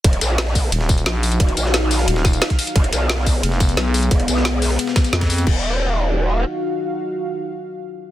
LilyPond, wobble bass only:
\new Staff \with { instrumentName = "Wobble bass" } { \clef bass \time 4/4 \key ees \minor \tempo 4 = 177 ees,,8 bes,,4. r2 | ees,,8 bes,,4. r2 | f,,8 ces,4. r2 | f,,8 ces,4. r2 |
ees,,2. r4 | r1 | }